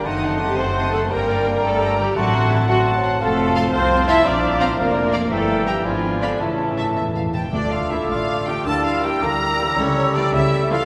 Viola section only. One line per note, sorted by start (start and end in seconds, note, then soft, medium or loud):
0.05 0.40 D#4 medium
0.40 0.58 G4 medium
0.58 0.93 C5 medium
0.93 1.00 A4 medium
1.11 1.63 A#4 medium
1.63 1.98 A4 medium
1.98 2.16 G4 medium
2.16 2.50 F#4 medium
2.51 2.68 E4 medium
2.68 2.86 F#4 medium
3.20 3.69 A4 medium
3.73 4.08 C5 medium
4.08 4.25 E5 medium
4.26 4.61 D5 medium
4.61 4.78 C5 medium
4.78 5.30 A#4 medium
5.31 5.66 A4 medium
5.67 5.85 G4 medium
5.85 6.22 F4 medium
6.22 6.40 D4 medium
6.41 6.96 C#4 medium
7.91 8.05 D3 medium
7.91 8.05 A3 medium
8.48 8.62 D3 medium
8.48 8.62 A3 medium
9.04 9.18 E3 medium
9.04 9.18 G3 medium
9.61 9.74 E3 medium
9.61 9.74 G3 medium
10.16 10.30 E3 medium
10.16 10.30 G3 medium
10.72 10.85 E3 medium
10.72 10.85 G3 medium